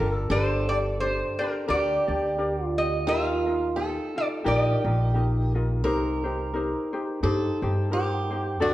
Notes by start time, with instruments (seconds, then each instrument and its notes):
Already playing: resonator guitar played with a steel bar A#4
0.00 upright bass G1, ukulele D4 F4 A#4
0.12 resonator guitar played with a steel bar A4
0.30 upright bass G1, ukulele D4 G4 D5, steel-string acoustic guitar A4, resonator guitar played with a steel bar C5
0.69 ukulele D4 G4 D5, resonator guitar played with a steel bar D5
1.00 ukulele D4 G4 D5, resonator guitar played with a steel bar C5
1.39 ukulele D4 G4 D5, resonator guitar played with a steel bar A#4
1.68 upright bass D2, ukulele D4 G4 A#4 D5, steel-string acoustic guitar G4, resonator guitar played with a steel bar D5
2.08 upright bass D2, ukulele D4 G4 D5
2.38 ukulele D4 G4 A#4 D5
2.64 steel-string acoustic guitar F4
2.78 ukulele G4, resonator guitar played with a steel bar D#5
3.07 upright bass D#2, ukulele D#4 F4 G4 A#4, steel-string acoustic guitar F4, resonator guitar played with a steel bar F5
3.46 ukulele D#4 F4 A#4
3.76 ukulele D#4 F4 G4, steel-string acoustic guitar A4
4.16 ukulele D#4 F4, resonator guitar played with a steel bar D5
4.44 upright bass A#1, ukulele D#4 F4 G4 A#4, steel-string acoustic guitar G4, resonator guitar played with a steel bar D#5
4.84 upright bass A#1, ukulele D#4 F4 A#4
5.14 ukulele D#4 F4 G4 A#4
5.55 ukulele D#4 F4 A#4
5.84 upright bass C2, ukulele D#4 G4 A#4 C5, steel-string acoustic guitar A#4
6.24 ukulele D#4 G4 C5
6.53 ukulele D#4 G4 A#4 C5
6.93 ukulele D#4 G4 C5
7.23 upright bass G2, ukulele D#4 G4 C5, steel-string acoustic guitar A4
7.62 upright bass G2, ukulele D#4 G4 C5
7.91 ukulele D#4 G4 A#4 C5, steel-string acoustic guitar G4
8.31 ukulele D#4 G4 C5
8.60 upright bass D2, ukulele D4 F#4 A4 D5, steel-string acoustic guitar F#4